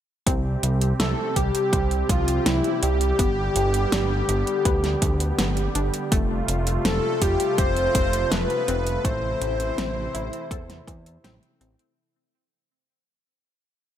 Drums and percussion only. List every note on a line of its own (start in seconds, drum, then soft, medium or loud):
0.27 kick loud
0.27 closed hi-hat medium
0.63 closed hi-hat medium
0.81 closed hi-hat medium
1.00 snare loud
1.00 closed hi-hat medium
1.36 kick medium
1.36 closed hi-hat medium
1.55 closed hi-hat medium
1.73 kick loud
1.73 closed hi-hat medium
1.91 closed hi-hat soft
2.09 kick loud
2.09 closed hi-hat medium
2.28 closed hi-hat medium
2.46 snare loud
2.46 closed hi-hat medium
2.64 closed hi-hat soft
2.83 closed hi-hat medium
3.01 closed hi-hat medium
3.19 kick loud
3.19 closed hi-hat medium
3.56 closed hi-hat medium
3.74 closed hi-hat soft
3.92 snare loud
3.92 closed hi-hat medium
4.29 closed hi-hat medium
4.47 closed hi-hat medium
4.65 kick loud
4.65 closed hi-hat medium
4.84 snare soft
4.84 closed hi-hat soft
5.02 kick loud
5.02 closed hi-hat medium
5.20 closed hi-hat medium
5.39 snare loud
5.39 closed hi-hat medium
5.57 closed hi-hat soft
5.75 closed hi-hat medium
5.94 closed hi-hat medium
6.12 kick loud
6.12 closed hi-hat medium
6.48 closed hi-hat medium
6.67 closed hi-hat medium
6.85 snare loud
6.85 closed hi-hat medium
7.22 kick medium
7.22 closed hi-hat medium
7.40 closed hi-hat medium
7.58 kick loud
7.58 closed hi-hat medium
7.76 closed hi-hat soft
7.95 kick loud
7.95 closed hi-hat medium
8.13 closed hi-hat medium
8.32 snare loud
8.32 closed hi-hat medium
8.50 closed hi-hat soft
8.68 closed hi-hat medium
8.87 closed hi-hat medium
9.05 kick loud
9.05 closed hi-hat medium
9.42 closed hi-hat medium
9.60 closed hi-hat soft
9.78 snare loud
9.78 closed hi-hat medium
10.15 closed hi-hat medium
10.33 closed hi-hat soft
10.51 kick loud
10.51 closed hi-hat medium
10.70 snare soft
10.70 closed hi-hat soft
10.87 kick loud
10.87 closed hi-hat medium
11.06 closed hi-hat medium
11.24 snare loud
11.24 closed hi-hat medium
11.43 closed hi-hat soft
11.61 closed hi-hat medium
11.79 closed hi-hat medium